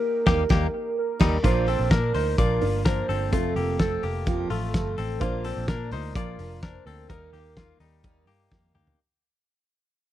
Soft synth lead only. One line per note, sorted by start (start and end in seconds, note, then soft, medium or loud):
0.00 0.96 A#4 loud
0.98 1.41 A#4 loud
1.45 1.93 C5 loud
1.91 2.38 A#4 loud
2.39 2.82 A#4 loud
2.86 3.30 C5 medium
3.33 3.76 A4 medium
3.81 4.24 A4 loud
4.27 4.49 F4 medium
4.51 4.72 A4 loud
4.74 5.21 A4 loud
5.20 5.69 C5 loud
5.68 6.13 A#4 loud
6.14 6.63 A#4 medium
6.61 6.87 C5 loud
6.85 8.51 A#4 loud